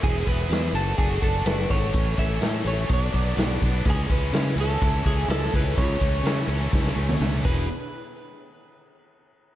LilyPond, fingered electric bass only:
\new Staff \with { instrumentName = "Fingered electric bass" } { \clef bass \time 4/4 \key e \mixolydian \tempo 4 = 125 e,,8 e,,8 e,8 fis,,8 fis,,8 fis,,8 fis,,8 gis,,8 | a,,8 a,,8 a,8 a,,8 b,,8 b,,8 b,,8 b,,8 | cis,8 cis,8 cis8 cis,8 cis,8 cis,8 cis,8 cis,8 | cis,8 cis,8 cis8 cis,8 cis,8 cis,8 cis,8 e,,8 |
r1 | }